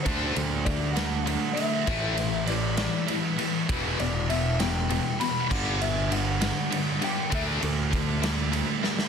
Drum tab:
CC |------------|x-----------|------------|x-----------|
RD |x-x-x-x-x-x-|--x-x-x-x-x-|x-x-x-x-x-x-|--x-x-x-x-x-|
SD |------o-----|------o-----|------o-----|------o-----|
BD |o---o-------|o-----------|o-----------|o-----------|

CC |------------|
RD |x-x-x-x-x---|
SD |------o---oo|
BD |o---o-------|